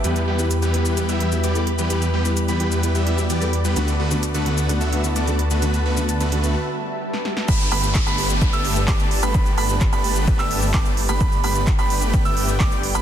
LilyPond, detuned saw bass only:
\new Staff \with { instrumentName = "Detuned saw bass" } { \clef bass \time 4/4 \key g \major \tempo 4 = 129 e,1~ | e,1 | d,1~ | d,2 r2 |
g,,8 g,,8. g,,4 g,,8. g,,8. g,,16 | g,,8 g,,8. g,,4 g,,8. g,,8. g,,16 | g,,8 g,,8. g,,4 g,,8. g,,8. g,,16 | }